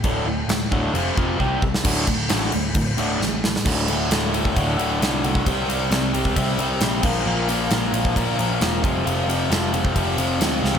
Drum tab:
CC |x---x---x-------|x-x-x-x-x-x-----|x---------------|--------------x-|
RD |----------------|----------------|--x-x-x-x-x-x-x-|x-x-x-x-x-x-x---|
SD |----o----------o|----o-------o-oo|----o-------o---|----o-------o---|
FT |----------------|----------------|----------------|----------------|
BD |o-----o---o-o-o-|o-o-----o-------|o------oo------o|o------oo-----o-|

CC |----------------|----------------|
RD |--x-x-x-x-x-x-x-|x-x-x-x-x-x-x---|
SD |----o-------o---|----o-------o-o-|
FT |----------------|---------------o|
BD |-------oo-----o-|-------oo-------|